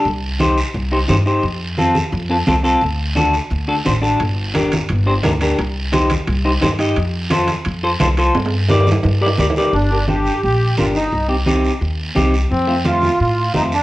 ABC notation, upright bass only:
X:1
M:4/4
L:1/8
Q:1/4=173
K:Gm
V:1 name="Upright bass" clef=bass
C,,4 C,,2 G,,2 | F,,4 F,,2 C,,2 | D,,4 D,,2 A,,,2 | G,,,4 G,,,2 D,,2 |
C,,4 C,,2 G,,2 | F,,4 F,,2 C,,2 | G,,4 G,,2 D,,2 | G,,,4 B,,,2 G,,,2 |
C,,4 E,,2 C,,2 | F,,4 A,,2 F,,2 |]